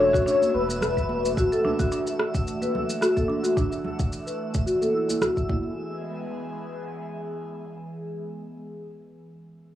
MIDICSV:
0, 0, Header, 1, 7, 480
1, 0, Start_track
1, 0, Tempo, 550459
1, 1189, Time_signature, 4, 2, 24, 8
1, 8502, End_track
2, 0, Start_track
2, 0, Title_t, "Synth texture"
2, 0, Program_c, 0, 99
2, 0, Note_on_c, 0, 76, 82
2, 5038, Note_off_c, 0, 76, 0
2, 8502, End_track
3, 0, Start_track
3, 0, Title_t, "Soft synth lead"
3, 0, Program_c, 1, 80
3, 0, Note_on_c, 1, 73, 106
3, 219, Note_off_c, 1, 73, 0
3, 224, Note_on_c, 1, 73, 92
3, 398, Note_off_c, 1, 73, 0
3, 414, Note_on_c, 1, 73, 59
3, 470, Note_on_c, 1, 71, 92
3, 484, Note_off_c, 1, 73, 0
3, 1190, Note_off_c, 1, 71, 0
3, 8502, End_track
4, 0, Start_track
4, 0, Title_t, "Marimba"
4, 0, Program_c, 2, 12
4, 0, Note_on_c, 2, 62, 94
4, 113, Note_off_c, 2, 62, 0
4, 116, Note_on_c, 2, 66, 96
4, 181, Note_off_c, 2, 66, 0
4, 228, Note_on_c, 2, 62, 95
4, 353, Note_off_c, 2, 62, 0
4, 845, Note_on_c, 2, 71, 70
4, 947, Note_off_c, 2, 71, 0
4, 1198, Note_on_c, 2, 66, 101
4, 1268, Note_off_c, 2, 66, 0
4, 1327, Note_on_c, 2, 69, 75
4, 1422, Note_off_c, 2, 69, 0
4, 1435, Note_on_c, 2, 62, 96
4, 1557, Note_off_c, 2, 62, 0
4, 1563, Note_on_c, 2, 66, 89
4, 1624, Note_off_c, 2, 66, 0
4, 1672, Note_on_c, 2, 62, 87
4, 1795, Note_off_c, 2, 62, 0
4, 2283, Note_on_c, 2, 71, 63
4, 2385, Note_off_c, 2, 71, 0
4, 2627, Note_on_c, 2, 66, 92
4, 2703, Note_off_c, 2, 66, 0
4, 2760, Note_on_c, 2, 69, 61
4, 2859, Note_off_c, 2, 69, 0
4, 2862, Note_on_c, 2, 62, 90
4, 2990, Note_off_c, 2, 62, 0
4, 2994, Note_on_c, 2, 66, 90
4, 3060, Note_off_c, 2, 66, 0
4, 3110, Note_on_c, 2, 62, 100
4, 3234, Note_off_c, 2, 62, 0
4, 3719, Note_on_c, 2, 71, 62
4, 3824, Note_off_c, 2, 71, 0
4, 4066, Note_on_c, 2, 66, 89
4, 4142, Note_off_c, 2, 66, 0
4, 4195, Note_on_c, 2, 69, 67
4, 4296, Note_off_c, 2, 69, 0
4, 4309, Note_on_c, 2, 64, 65
4, 4424, Note_off_c, 2, 64, 0
4, 4435, Note_on_c, 2, 64, 83
4, 4541, Note_off_c, 2, 64, 0
4, 4548, Note_on_c, 2, 66, 73
4, 4673, Note_off_c, 2, 66, 0
4, 4681, Note_on_c, 2, 76, 58
4, 4784, Note_off_c, 2, 76, 0
4, 4793, Note_on_c, 2, 64, 75
4, 5238, Note_off_c, 2, 64, 0
4, 8502, End_track
5, 0, Start_track
5, 0, Title_t, "Analog synth pad"
5, 0, Program_c, 3, 89
5, 0, Note_on_c, 3, 52, 78
5, 0, Note_on_c, 3, 57, 75
5, 0, Note_on_c, 3, 62, 72
5, 0, Note_on_c, 3, 66, 86
5, 4754, Note_off_c, 3, 52, 0
5, 4754, Note_off_c, 3, 62, 0
5, 4755, Note_off_c, 3, 57, 0
5, 4755, Note_off_c, 3, 66, 0
5, 4785, Note_on_c, 3, 56, 69
5, 4785, Note_on_c, 3, 59, 68
5, 4788, Note_on_c, 3, 52, 76
5, 4789, Note_on_c, 3, 68, 78
5, 7610, Note_off_c, 3, 56, 0
5, 7610, Note_off_c, 3, 59, 0
5, 7612, Note_off_c, 3, 52, 0
5, 7612, Note_off_c, 3, 68, 0
5, 8502, End_track
6, 0, Start_track
6, 0, Title_t, "Sub bass"
6, 0, Program_c, 4, 38
6, 0, Note_on_c, 4, 28, 103
6, 200, Note_off_c, 4, 28, 0
6, 474, Note_on_c, 4, 28, 90
6, 1162, Note_off_c, 4, 28, 0
6, 8502, End_track
7, 0, Start_track
7, 0, Title_t, "Drums"
7, 125, Note_on_c, 9, 36, 109
7, 134, Note_on_c, 9, 82, 61
7, 213, Note_off_c, 9, 36, 0
7, 221, Note_off_c, 9, 82, 0
7, 242, Note_on_c, 9, 82, 52
7, 329, Note_off_c, 9, 82, 0
7, 366, Note_on_c, 9, 60, 48
7, 366, Note_on_c, 9, 63, 67
7, 372, Note_on_c, 9, 82, 30
7, 453, Note_off_c, 9, 60, 0
7, 453, Note_off_c, 9, 63, 0
7, 459, Note_off_c, 9, 82, 0
7, 601, Note_on_c, 9, 63, 64
7, 613, Note_on_c, 9, 82, 68
7, 688, Note_off_c, 9, 63, 0
7, 700, Note_off_c, 9, 82, 0
7, 710, Note_on_c, 9, 64, 88
7, 719, Note_on_c, 9, 37, 81
7, 720, Note_on_c, 9, 82, 53
7, 797, Note_off_c, 9, 64, 0
7, 806, Note_off_c, 9, 37, 0
7, 808, Note_off_c, 9, 82, 0
7, 846, Note_on_c, 9, 36, 53
7, 849, Note_on_c, 9, 60, 32
7, 853, Note_on_c, 9, 82, 32
7, 934, Note_off_c, 9, 36, 0
7, 936, Note_off_c, 9, 60, 0
7, 941, Note_off_c, 9, 82, 0
7, 949, Note_on_c, 9, 63, 76
7, 952, Note_on_c, 9, 60, 51
7, 1036, Note_off_c, 9, 63, 0
7, 1039, Note_off_c, 9, 60, 0
7, 1078, Note_on_c, 9, 63, 54
7, 1094, Note_on_c, 9, 82, 61
7, 1165, Note_off_c, 9, 63, 0
7, 1181, Note_off_c, 9, 82, 0
7, 1197, Note_on_c, 9, 36, 118
7, 1202, Note_on_c, 9, 82, 57
7, 1284, Note_off_c, 9, 36, 0
7, 1289, Note_off_c, 9, 82, 0
7, 1328, Note_on_c, 9, 60, 47
7, 1329, Note_on_c, 9, 82, 34
7, 1415, Note_off_c, 9, 60, 0
7, 1416, Note_off_c, 9, 82, 0
7, 1436, Note_on_c, 9, 64, 84
7, 1437, Note_on_c, 9, 63, 52
7, 1524, Note_off_c, 9, 63, 0
7, 1524, Note_off_c, 9, 64, 0
7, 1566, Note_on_c, 9, 36, 96
7, 1566, Note_on_c, 9, 82, 61
7, 1653, Note_off_c, 9, 36, 0
7, 1653, Note_off_c, 9, 82, 0
7, 1675, Note_on_c, 9, 82, 55
7, 1762, Note_off_c, 9, 82, 0
7, 1805, Note_on_c, 9, 82, 33
7, 1809, Note_on_c, 9, 60, 33
7, 1892, Note_off_c, 9, 82, 0
7, 1896, Note_off_c, 9, 60, 0
7, 1914, Note_on_c, 9, 37, 75
7, 2001, Note_off_c, 9, 37, 0
7, 2046, Note_on_c, 9, 36, 100
7, 2046, Note_on_c, 9, 82, 59
7, 2133, Note_off_c, 9, 36, 0
7, 2134, Note_off_c, 9, 82, 0
7, 2157, Note_on_c, 9, 82, 54
7, 2244, Note_off_c, 9, 82, 0
7, 2282, Note_on_c, 9, 63, 65
7, 2287, Note_on_c, 9, 60, 40
7, 2287, Note_on_c, 9, 82, 31
7, 2370, Note_off_c, 9, 63, 0
7, 2374, Note_off_c, 9, 60, 0
7, 2375, Note_off_c, 9, 82, 0
7, 2398, Note_on_c, 9, 64, 93
7, 2399, Note_on_c, 9, 60, 49
7, 2485, Note_off_c, 9, 64, 0
7, 2486, Note_off_c, 9, 60, 0
7, 2526, Note_on_c, 9, 82, 67
7, 2613, Note_off_c, 9, 82, 0
7, 2636, Note_on_c, 9, 37, 77
7, 2637, Note_on_c, 9, 82, 57
7, 2723, Note_off_c, 9, 37, 0
7, 2725, Note_off_c, 9, 82, 0
7, 2760, Note_on_c, 9, 63, 82
7, 2765, Note_on_c, 9, 36, 57
7, 2765, Note_on_c, 9, 82, 34
7, 2847, Note_off_c, 9, 63, 0
7, 2852, Note_off_c, 9, 36, 0
7, 2852, Note_off_c, 9, 82, 0
7, 2874, Note_on_c, 9, 60, 44
7, 2961, Note_off_c, 9, 60, 0
7, 3003, Note_on_c, 9, 82, 59
7, 3090, Note_off_c, 9, 82, 0
7, 3113, Note_on_c, 9, 36, 116
7, 3118, Note_on_c, 9, 82, 53
7, 3200, Note_off_c, 9, 36, 0
7, 3205, Note_off_c, 9, 82, 0
7, 3239, Note_on_c, 9, 60, 42
7, 3246, Note_on_c, 9, 82, 34
7, 3326, Note_off_c, 9, 60, 0
7, 3333, Note_off_c, 9, 82, 0
7, 3352, Note_on_c, 9, 64, 81
7, 3440, Note_off_c, 9, 64, 0
7, 3484, Note_on_c, 9, 36, 92
7, 3484, Note_on_c, 9, 82, 59
7, 3571, Note_off_c, 9, 36, 0
7, 3572, Note_off_c, 9, 82, 0
7, 3597, Note_on_c, 9, 82, 49
7, 3684, Note_off_c, 9, 82, 0
7, 3727, Note_on_c, 9, 82, 31
7, 3814, Note_off_c, 9, 82, 0
7, 3963, Note_on_c, 9, 82, 60
7, 3965, Note_on_c, 9, 36, 101
7, 4050, Note_off_c, 9, 82, 0
7, 4052, Note_off_c, 9, 36, 0
7, 4076, Note_on_c, 9, 82, 55
7, 4163, Note_off_c, 9, 82, 0
7, 4202, Note_on_c, 9, 63, 69
7, 4205, Note_on_c, 9, 82, 28
7, 4207, Note_on_c, 9, 60, 39
7, 4289, Note_off_c, 9, 63, 0
7, 4293, Note_off_c, 9, 82, 0
7, 4294, Note_off_c, 9, 60, 0
7, 4445, Note_on_c, 9, 63, 56
7, 4445, Note_on_c, 9, 82, 63
7, 4532, Note_off_c, 9, 63, 0
7, 4532, Note_off_c, 9, 82, 0
7, 4547, Note_on_c, 9, 64, 80
7, 4550, Note_on_c, 9, 37, 74
7, 4552, Note_on_c, 9, 82, 52
7, 4634, Note_off_c, 9, 64, 0
7, 4637, Note_off_c, 9, 37, 0
7, 4639, Note_off_c, 9, 82, 0
7, 4676, Note_on_c, 9, 60, 31
7, 4683, Note_on_c, 9, 36, 55
7, 4686, Note_on_c, 9, 82, 29
7, 4763, Note_off_c, 9, 60, 0
7, 4771, Note_off_c, 9, 36, 0
7, 4773, Note_off_c, 9, 82, 0
7, 4785, Note_on_c, 9, 60, 39
7, 4791, Note_on_c, 9, 36, 91
7, 4794, Note_on_c, 9, 63, 67
7, 4872, Note_off_c, 9, 60, 0
7, 4878, Note_off_c, 9, 36, 0
7, 4881, Note_off_c, 9, 63, 0
7, 4914, Note_on_c, 9, 63, 52
7, 5001, Note_off_c, 9, 63, 0
7, 8502, End_track
0, 0, End_of_file